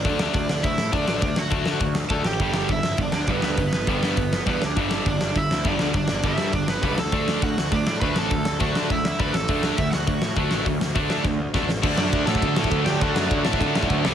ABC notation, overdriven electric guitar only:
X:1
M:4/4
L:1/8
Q:1/4=204
K:Dmix
V:1 name="Overdriven electric guitar"
[Dd]2 [Dd]2 [Ee]2 [Dd]2 | [Dd] [Ff]4 z [Aa] [Gg]- | [Gg]2 [Ee]2 [Dd] [Dd] [B,B] [B,B]- | [B,B]6 [B,B] [Dd]- |
[Dd] z [Dd]2 [Ee]2 [Dd]2 | [Dd]2 [Ee]2 [Dd] [B,B] [Bb] [Aa]- | [Aa]2 [Ff]2 [Dd] [Dd] [Bb] [Aa]- | [Aa]2 [Ff]2 [Ee] [Ee] [Bb] [Aa]- |
[Aa]2 [Ee] [Ff]4- [Ff]- | [Ff]6 z2 | z [Dd]2 [Aa]4 [Gg] | [Ff]3 z4 z |]